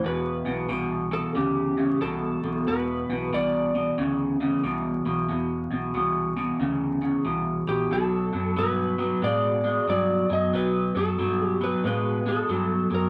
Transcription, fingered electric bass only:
X:1
M:4/4
L:1/8
Q:"Swing" 1/4=92
K:Em
V:1 name="Fingered electric bass" clef=bass
E,,, B,,, C,,2 D,,2 C,, B,,, | E,,, B,,, C,,2 D,,2 C,, B,,, | E,,, B,,, C,,2 D,,2 C,, ^A,,, | B,,, F,, G,,2 A,,2 G,, F,, |
B,,, F,, G,,2 A,,2 G,, F,, |]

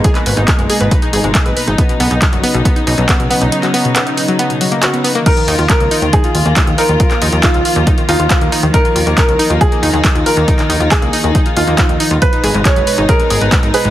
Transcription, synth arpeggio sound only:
X:1
M:4/4
L:1/16
Q:1/4=138
K:Ebm
V:1 name="Synth arpeggio sound"
A c c E A A, A c c E A A, A c c E | =B, =B,, B, ^D D ^F, B, B,, B, D D F, B, B,, B, D | ^D ^F, =B, =B,, B, D D F, B, B,, F, _B, ^F =B, B, _B, | E E, E F z B, E E, E F F B, E E, E F |
F B, E E, E F F B, E E, E F F B, E E, | E F F B, E E, E F F B, E E, E F F B, | E E, E F z B, E E, E F F B, E E, E F | c E A A, A c c E A A, A c c E A A, |]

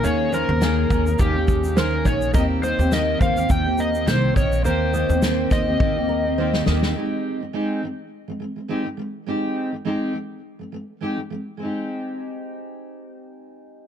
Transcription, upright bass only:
X:1
M:4/4
L:1/16
Q:"Swing 16ths" 1/4=104
K:Ab
V:1 name="Upright bass" clef=bass
E,,3 E,,3 E,,2 E,,6 B,,,2 | E,,3 E,,3 E,,2 E,,4 C,,2 B,,,2 | E,,3 E,,3 E,,2 E,,6 E,,2 | z16 |
z16 | z16 |]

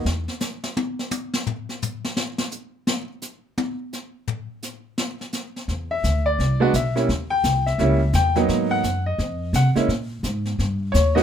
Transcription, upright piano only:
X:1
M:4/4
L:1/8
Q:"Swing" 1/4=171
K:G#m
V:1 name="Upright piano"
z8 | z8 | z8 | z8 |
z e2 =d3 e z | z =g2 e3 g z | z f2 d3 f z | z6 c d |]
V:2 name="Upright piano"
z8 | z8 | z8 | z8 |
z4 z [G,B,=DF] z [=G,A,CE] | z4 [=G,A,CE] z2 [F,A,B,D]- | [F,A,B,D]2 z4 z [G,A,CE] | z6 z [G,,A,B,DF] |]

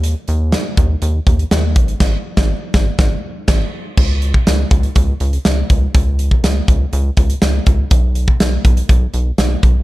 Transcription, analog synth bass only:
X:1
M:4/4
L:1/16
Q:1/4=122
K:Ebdor
V:1 name="Analog synth bass" clef=bass
E,,2 E,,3 z E,,2 E,,2 E,,2 E,,2 A,,,2 | A,,,2 z A,,,2 z A,,,2 A,,,2 z2 A,,,2 z2 | D,,4 D,,2 D,,2 D,,2 D,,2 D,,2 D,,2 | D,,4 D,,2 D,,2 D,,2 D,,2 D,,2 D,,2 |
_C,,4 C,,2 C,,2 C,,2 C,,2 C,,2 C,,2 |]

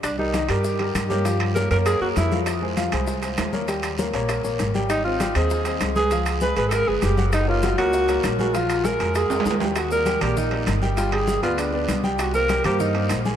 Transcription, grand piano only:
X:1
M:4/4
L:1/8
Q:1/4=198
K:Eb
V:1 name="Grand piano"
z [G,GB] [E,Ee] [G,GB]2 [G,GB]2 [B,B_d] | [F,Ff]2 [B,B_d] [B,Bd]2 [B,Bd]2 [F,Ff]- | [F,Ff] [A,Ac] [F,Ff] [A,Ac]2 [A,Ac]2 [B,B_d] | [G,Gg]2 [B,B_d] [B,Bd]2 [B,Bd]2 [G,Gg]- |
[G,Gg] [Cce] [G,Gg] [Cce]2 [Cce]2 [A,A_c] | [F,Ff]2 [A,A_c] [A,Ac]2 [A,Ac]2 [_G,_G_g]- | [_G,_G_g] [B,B_d] [G,Gg] [B,Bd]2 [B,Bd]2 [A,AB] | [F,Ff]2 [A,AB] [A,AB]2 [A,AB]2 [G,Gg] |
z [B,Bd] [G,Gg] [B,Bd]2 [B,Bd]2 [G,Gg] | [G,Gg] [G,Ag]2 [=B,=Bd]2 [B,Bd]2 [G,Gg]- | [G,Gg] [B,Bc] [G,Gg] [B,Bc]2 [B,Bc]2 [A,Aa] |]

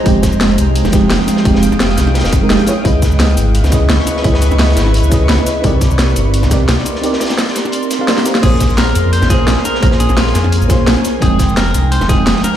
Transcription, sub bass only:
X:1
M:4/4
L:1/16
Q:"Swing 16ths" 1/4=172
K:Bbdor
V:1 name="Sub bass" clef=bass
F,,,3 F,,,3 C,,3 F,,,3 F,,, z3 | F,,,3 F,,,3 C,,3 F,,,3 F,,, z3 | D,,3 D,,3 A,,,3 D,,3 D,, z3 | D,,3 D,,3 A,,,3 D,,3 D,, z3 |
C,,3 C,,3 G,,,3 C,,3 C,, z3 | z16 | B,,,3 B,,,3 F,,3 B,,,3 B,,, z3 | B,,,3 B,,,3 F,,3 B,,,3 B,,, z3 |
F,,,3 F,,,3 C,,3 F,,,3 F,,, z3 |]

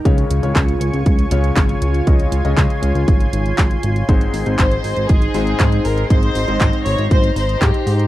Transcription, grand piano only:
X:1
M:4/4
L:1/16
Q:1/4=119
K:Dblyd
V:1 name="Grand piano"
[D,A,DFd]3 [D,A,DFd]6- [D,A,DFd] [D,A,DFd]6 | [D,A,DFe]3 [D,A,DFe]12- [D,A,DFe] | [A,,A,CEc]3 [A,,A,CEc]6- [A,,A,CEc] [A,,A,CEc]6 | [A,,A,CEe]3 [A,,A,CEe]12- [A,,A,CEe] |]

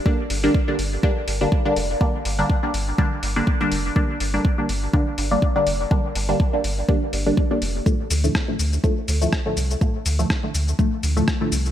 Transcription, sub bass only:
X:1
M:4/4
L:1/8
Q:"Swing 16ths" 1/4=123
K:Gm
V:1 name="Sub bass" clef=bass
z G,,, z G,,, z G,,, z F,,, | z G,,, z G,,, z G,,, z F,,, | z G,,, z G,,, z G,,, z F,,, | z G,,, z G,,, z G,,, z F,,, |
z D,, z D,, z D,, z C,, | z D,, z D,, z D,, z C,, |]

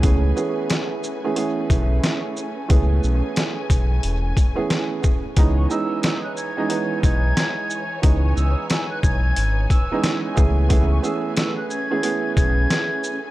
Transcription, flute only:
X:1
M:4/4
L:1/16
Q:"Swing 16ths" 1/4=90
K:C#m
V:1 name="Flute"
z16 | z16 | z c' e'2 e' f' g'4 g'6 | z c' e'2 e' f' g'4 e'3 z3 |
z c' e'2 e' f' g'4 g'6 |]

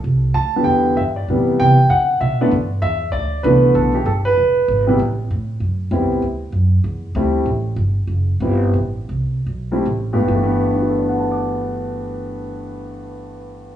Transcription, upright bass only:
X:1
M:4/4
L:1/8
Q:"Swing" 1/4=194
K:G
V:1 name="Upright bass" clef=bass
C,,2 D,,2 E,,2 G,,2 | A,, z C,2 D,2 B,,2 | G,,2 E,,2 D,,2 C,,2 | B,,,2 G,,,2 E,,,2 ^G,,,2 |
A,,,2 A,,2 F,,2 (3E,, C,, A,,, | D,,2 F,,2 E,,2 D,,2 | A,,,2 G,,,2 F,,,2 G,,,2 | A,,,2 C,,2 B,,,2 A,,,2 |
G,,,8- | G,,,8 |]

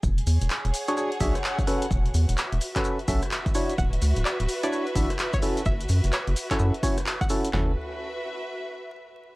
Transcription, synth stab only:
X:1
M:4/4
L:1/16
Q:"Swing 16ths" 1/4=128
K:F#m
V:1 name="Synth stab"
z6 z [DFGc] [DFGc] z [DFGe] z3 [CFAB] z | z6 z [CFAB] [CFAB] z [CFAe] z3 [DEFc] z | z6 z [DEFc] [DEFc] z [DEFe] z3 [CEFA] z | z6 z [CEFA] [CEFA] z [CEFc] z3 [CEFA] z |
[CEFA]2 z12 z2 |]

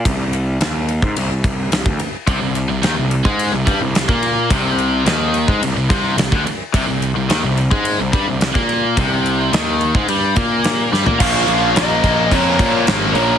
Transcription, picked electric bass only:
X:1
M:4/4
L:1/16
Q:1/4=108
K:Cphr
V:1 name="Picked electric bass" clef=bass
C,,4 E,,3 A,, C,, C,, C,,2 C,, =D,, z2 | C,, C,,2 C,, E,, C,,2 A,,2 C,, G,, C,,2 B,,3 | C,,4 E,,3 A,, C,, C,, C,,2 C,, =D,, z2 | C,, C,,2 C,, E,, C,,2 A,,2 C,, G,, C,,2 B,,3 |
C,,4 E,,3 A,, G,,2 B,,4 G,, B,, | B,,,2 B,,,2 B,,,2 B,,,2 F,,2 B,,2 A,,,2 B,,,2 |]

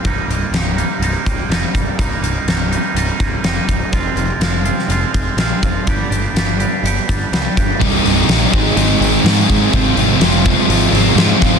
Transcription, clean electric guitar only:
X:1
M:4/4
L:1/8
Q:1/4=124
K:Cm
V:1 name="Clean electric guitar" clef=bass
[C,,G,,C,G,B,E] [C,G,B,E] [C,G,B,E] [C,,G,,C,G,B,E] [C,G,B,E] [C,G,B,E] [C,,G,,C,G,B,E] [C,G,B,E] | [C,,G,,C,G,B,E] [C,G,B,E] [C,G,B,E] [C,,G,,C,G,B,E] [C,G,B,E] [C,B,E] [C,,G,,C,G,B,E] [C,G,B,E] | [F,,C,F,A,CF] [F,A,CF] [F,A,CF] [F,,C,F,A,CF] [F,A,CF] [F,A,CF] [F,,C,F,A,CF] [F,A,CF] | [G,,D,G,=B,DG] [G,B,DG] [G,B,DG] [G,,D,G,B,DG] [G,B,DG] [G,B,DG] [G,,D,G,B,DG] [G,B,DG] |
z8 | z8 |]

